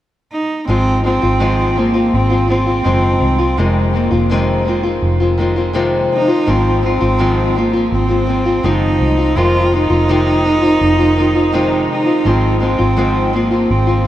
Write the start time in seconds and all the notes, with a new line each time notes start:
0.33 D#4
0.67 G#1 G#2 D#3 F3 G#3 C4 F4
1.04 F3 G#3 C4 F4
1.22 G#1 F3 G#3 C4 F4
1.40 G#2 D#3 F3 G#3 C4 F4
1.76 F3 G#3 A#3 C4 F4
1.94 F3 G#3 C4 F4
2.14 G#1 C4
2.30 F3 G#3 C4 F4
2.47 F3 G#3 C4 F4
2.66 F3 G#3 C4 F4
2.84 F#1 G#2 D#3 F3 G#3 C4 F4
3.21 C2
3.38 F3 G#3 C4 F4
3.57 F1 F2 C3 D#3 G#3 C4 F4
3.93 D#3 G#3 A#3 C4 F4
4.11 F1 D#3 G#3 C4 F4
4.30 F2 C3 D#3 G#3 C4 F4
4.65 D#3 G#3 C4 F4
4.83 D#3 G#3 C4 F4
5.02 F1
5.20 D#3 G#3 C4 F4
5.38 D#3 G#3 C4 F4
5.56 D#3 G#3 C4 F4
5.73 F2 C3 D#3 G#3 C4 F4
6.13 D#4
6.28 D#3 G#3 C4 F4
6.46 G#1 G#2 D#3 F3 G#3 C4 F4
6.83 F3 G#3 C4 F4
7.01 G#1 F3 G#3 C4 F4
7.18 G#2 D#3 F3 G#3 C4 F4
7.55 F3 G#3 A#3 C4 F4
7.73 F3 G#3 C4 F4
7.92 G#1 C4
8.08 F3 G#3 C4 F4
8.27 F3 G#3 C4 F4
8.45 F3 G#3 C4 F4
8.63 F#1 G#2 D#3 F3 G#3 C4 D#4 F4
9.00 C2
9.17 F3 G#3 C4 F4
9.36 F1 F2 C3 D#3 G#3 C4 F4
9.72 D#3 G#3 C4 D#4 F4
9.89 F1 D#3 G#3 C4 F4
10.08 F2 C3 D#3 G#3 C4 F4
10.44 D#3 G#3 C4 F4
10.62 D#3 G#3 C4 F4
10.81 F1
10.99 D#3 G#3 C4 F4
11.17 D#3 G#3 C4 F4
11.35 D#3 G#3 C4 F4
11.52 F2 C3 D#3 G#3 C4 F4
11.92 D#4
12.06 D#3 G#3 C4 F4
12.25 G#1 G#2 D#3 F3 G#3 C4 F4
12.29 C4
12.60 F3 G#3 C4 F4
12.78 G#1 F3 G#3 C4 F4
12.97 G#2 D#3 F3 G#3 C4 F4
13.33 F3 G#3 A#3 C4 F4
13.51 F3 G#3 C4 F4
13.70 G#1 C4
13.87 F3 G#3 C4 F4